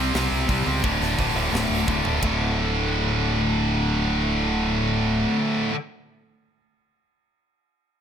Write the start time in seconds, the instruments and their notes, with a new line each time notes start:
Already playing: fingered electric bass C2, distorted electric guitar C3 G3 C4
0.13 fingered electric bass C2, distorted electric guitar C3 G3 C4, snare, open hi-hat
0.31 fingered electric bass C2, open hi-hat
0.48 fingered electric bass C2, distorted electric guitar C3 G3 C4, kick, open hi-hat
0.66 fingered electric bass C#2, distorted electric guitar C3 G3 C4, open hi-hat
0.83 fingered electric bass D1, distorted electric guitar D2 A2 D3, kick, open hi-hat
1.01 fingered electric bass D1, snare, open hi-hat
1.18 fingered electric bass D1, distorted electric guitar D2 A2 D3, kick, open hi-hat
1.35 fingered electric bass D1, distorted electric guitar D2 A2 D3, open hi-hat
1.52 fingered electric bass D1, distorted electric guitar D2 A2 D3, snare, open hi-hat
1.70 fingered electric bass D1, open hi-hat
1.87 fingered electric bass D1, distorted electric guitar D2 A2 D3, kick
2.04 fingered electric bass D1, distorted electric guitar D2 A2 D3, floor tom
2.21 fingered electric bass D1, distorted electric guitar D2 A2, kick, ride bell
2.25 distorted electric guitar D3